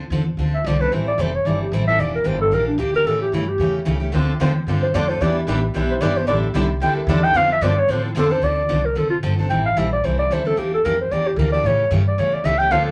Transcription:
0.10 upright bass E2, steel-string acoustic guitar D3 F3 C4 D4 A4
0.37 upright bass D2, steel-string acoustic guitar D3 F3 C4 D4 A4
0.55 clarinet E5
0.64 upright bass C2, steel-string acoustic guitar D3 F3 C4 D4 A4, clarinet D5
0.80 steel-string acoustic guitar C4 D4 A4, clarinet B4
0.92 upright bass A1, steel-string acoustic guitar E3 G3 C4 E4 A4, clarinet C5
1.08 clarinet D5
1.18 upright bass F1, steel-string acoustic guitar E3 G3 C4 E4 A4, clarinet C5
1.36 clarinet C#5
1.45 upright bass G1, steel-string acoustic guitar E3 G3 C4 E4 A4, clarinet D5
1.62 clarinet G4
1.72 upright bass A1, steel-string acoustic guitar E3 G3 C4 E4 A4, clarinet C5
1.88 steel-string acoustic guitar C4 E4 A4, clarinet E5
1.99 upright bass E1, steel-string acoustic guitar E3 A#3 D4 G4, clarinet D5
2.15 clarinet A#4
2.24 upright bass G1, steel-string acoustic guitar E3 A#3 D4 G4, clarinet C5
2.41 clarinet A4
2.51 upright bass A#1, steel-string acoustic guitar E3 A#3 D4 G4, clarinet A#4
2.67 clarinet D4
2.78 upright bass D2, steel-string acoustic guitar E3 A#3 D4 G4, clarinet G4
2.94 steel-string acoustic guitar A#3 D4 G4, clarinet A#4
3.05 upright bass A2, steel-string acoustic guitar C#3 E3 A3 C#4 G4, clarinet A4
3.22 clarinet G4
3.32 upright bass G2, steel-string acoustic guitar C#3 E3 A3 C#4 G4, clarinet E4
3.48 clarinet G4
3.58 upright bass E2, steel-string acoustic guitar C#3 E3 A3 C#4 G4
3.85 upright bass C#2, steel-string acoustic guitar C#3 E3 A3 C#4 G4
4.00 steel-string acoustic guitar A3 C#4 G4
4.12 upright bass D2, steel-string acoustic guitar D3 F3 A3 C4 D4 F4 A4
4.40 upright bass E2, steel-string acoustic guitar D3 F3 A3 C4 D4 F4 A4
4.67 upright bass G2, steel-string acoustic guitar D3 F3 A3 C4 D4 F4 A4
4.83 clarinet C5
4.94 upright bass F2, steel-string acoustic guitar D3 F3 A3 C4 D4 F4 A4, clarinet D5
5.09 steel-string acoustic guitar C4 F4 A4, clarinet C5
5.21 upright bass E2, steel-string acoustic guitar E3 G3 B3 D4 E4 G4 B4, clarinet D5
5.47 upright bass A1, steel-string acoustic guitar E3 G3 B3 D4 E4 G4 B4
5.74 upright bass B1, steel-string acoustic guitar E3 G3 B3 D4 E4 G4 B4
5.91 clarinet C5
6.01 upright bass G1, steel-string acoustic guitar E3 G3 B3 D4 E4 G4 B4, clarinet D5
6.15 steel-string acoustic guitar B3 D4 G4, clarinet C5
6.27 upright bass A1, steel-string acoustic guitar D3 G3 D4 E4 A4, clarinet D5
6.54 upright bass C2, steel-string acoustic guitar D3 G3 D4 E4 A4
6.80 upright bass D2, steel-string acoustic guitar D3 G3 D4 E4 A4, clarinet G5
6.97 clarinet A#4
7.07 upright bass E2, steel-string acoustic guitar D3 G3 D4 E4 A4, clarinet D5
7.24 steel-string acoustic guitar D4 E4 A4, clarinet G5
7.33 upright bass F2, steel-string acoustic guitar D3 F3 C4 D4 A4, clarinet F5
7.52 clarinet E5
7.61 upright bass G2, steel-string acoustic guitar D3 F3 C4 D4 A4, clarinet D5
7.79 clarinet C#5
7.88 upright bass A2, steel-string acoustic guitar D3 F3 C4 D4 A4, clarinet C5
8.05 clarinet E4
8.15 upright bass F2, steel-string acoustic guitar D3 F3 C4 D4 A4, clarinet A4
8.30 steel-string acoustic guitar C4 D4 A4, clarinet C5
8.42 upright bass D2, steel-string acoustic guitar D3 F3 C4 D4 A4, clarinet D5
8.69 upright bass C2, steel-string acoustic guitar D3 F3 C4 D4 A4
8.86 clarinet A#4
8.95 upright bass F1, steel-string acoustic guitar D3 F3 C4 D4 A4, clarinet A4
9.11 clarinet F4
9.23 upright bass G1, steel-string acoustic guitar D3 F3 C4 D4 A4
9.39 steel-string acoustic guitar C4 D4 A4
9.50 upright bass A1, steel-string acoustic guitar E3 G3 C4 E4 A4, clarinet G5
9.66 clarinet F5
9.77 upright bass A#1, steel-string acoustic guitar E3 G3 C4 E4 A4, clarinet E5
9.93 clarinet D5
10.04 upright bass C2, steel-string acoustic guitar E3 G3 C4 E4 A4, clarinet C5
10.19 clarinet D5
10.31 upright bass D2, steel-string acoustic guitar E3 G3 C4 E4 A4, clarinet C5
10.45 steel-string acoustic guitar C4 E4 A4, clarinet A4
10.56 upright bass E2, steel-string acoustic guitar E3 A#3 D4 G4, clarinet G4
10.74 clarinet A4
10.85 upright bass F2, steel-string acoustic guitar E3 A#3 D4 G4, clarinet A#4
11.02 clarinet C5
11.11 upright bass E2, steel-string acoustic guitar E3 A#3 D4 G4, clarinet D5
11.28 clarinet G4
11.36 upright bass D2, steel-string acoustic guitar E3 A#3 D4 G4, clarinet A#4
11.52 steel-string acoustic guitar A#3 D4 G4, clarinet D5
11.64 upright bass A2, steel-string acoustic guitar C#3 E3 A3 C#4 G4, clarinet C#5
11.91 upright bass G2, steel-string acoustic guitar C#3 E3 A3 C#4 G4
12.08 clarinet D5
12.18 upright bass E2, steel-string acoustic guitar C#3 E3 A3 C#4 G4, clarinet C#5
12.34 clarinet D5
12.44 upright bass C#2, steel-string acoustic guitar C#3 E3 A3 C#4 G4, clarinet E5
12.59 steel-string acoustic guitar A3 C#4 G4, clarinet G5
12.71 upright bass D2, steel-string acoustic guitar D3 F3 A3 C4 D4 F4 A4, clarinet F5
12.86 clarinet A4

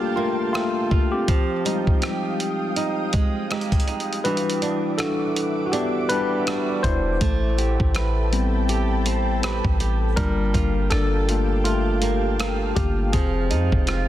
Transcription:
Already playing: tine electric piano G3 A3 A#3 D4 F4 G4 A4 A#4, nylon-string guitar G3 F4 A4, ambient pad F5 G5 A5
0.16 tine electric piano A3 F4, nylon-string guitar A#3
0.53 tine electric piano A3 F4, nylon-string guitar A#3 F4 A4, cross-stick
0.91 nylon-string guitar F4, kick
1.12 tine electric piano C4 G4
1.28 nylon-string guitar F3, ambient pad F5 G5 D#6, kick, closed hi-hat
1.65 tine electric piano G3 G#3 D#4, nylon-string guitar D#4, closed hi-hat
1.87 kick
2.02 nylon-string guitar G4, cross-stick, closed hi-hat
2.40 closed hi-hat
2.76 nylon-string guitar D#4, closed hi-hat
3.13 nylon-string guitar G#3, kick, closed hi-hat
3.51 nylon-string guitar G#3 D#4 G4, cross-stick, closed hi-hat
3.61 closed hi-hat
3.72 kick, closed hi-hat
3.80 closed hi-hat
3.88 nylon-string guitar D#4, closed hi-hat
4.00 closed hi-hat
4.13 closed hi-hat
4.24 nylon-string guitar E3, tine electric piano G3 D4 F#4 B4, ambient pad E5 F#5 D6, closed hi-hat
4.37 closed hi-hat
4.50 closed hi-hat
4.62 nylon-string guitar D4, closed hi-hat
4.98 tine electric piano D4 A4, nylon-string guitar F#4, cross-stick, closed hi-hat
5.36 closed hi-hat
5.66 tine electric piano F#4
5.72 tine electric piano B3 G4, nylon-string guitar D4, closed hi-hat
6.09 nylon-string guitar G3, tine electric piano D4 B4, closed hi-hat
6.47 nylon-string guitar G3 D4 F#4, cross-stick, closed hi-hat
6.83 808-style bass E1, nylon-string guitar D4, tine electric piano E4 C5, kick, closed hi-hat
7.21 808-style bass A1, nylon-string guitar A3, ambient pad A4 G5 A5 B5, kick, closed hi-hat
7.58 nylon-string guitar G4, closed hi-hat
7.80 808-style bass A1, kick
7.95 nylon-string guitar B4, cross-stick, closed hi-hat
8.32 tine electric piano G3 B3 C4, closed hi-hat
8.69 nylon-string guitar G4, closed hi-hat
9.06 nylon-string guitar C4, closed hi-hat
9.43 nylon-string guitar C4 G4 B4, cross-stick, closed hi-hat
9.65 808-style bass A1, kick
9.80 nylon-string guitar G4, closed hi-hat
10.16 808-style bass G1, nylon-string guitar G3, tine electric piano G3 A#3 D4 F4 A#4, ambient pad G4 F5 G5 A5, kick, closed hi-hat
10.54 808-style bass G1, nylon-string guitar F4, kick, closed hi-hat
10.90 808-style bass G1, tine electric piano D4 A4, nylon-string guitar A4, cross-stick, closed hi-hat
11.28 tine electric piano A3 A#3 F4, closed hi-hat
11.64 tine electric piano A3 F4, nylon-string guitar F4, closed hi-hat
12.02 nylon-string guitar A#3, closed hi-hat
12.39 nylon-string guitar A#3 F4 A4, cross-stick, closed hi-hat
12.76 808-style bass G1, tine electric piano A#3 G4, nylon-string guitar F4, kick, closed hi-hat
13.13 808-style bass F1, nylon-string guitar F3, ambient pad G#3 G5 D#6, tine electric piano C4 G#4, kick, closed hi-hat
13.50 808-style bass F2, nylon-string guitar D#4, closed hi-hat
13.72 808-style bass F1, kick
13.87 nylon-string guitar F4, cross-stick, closed hi-hat

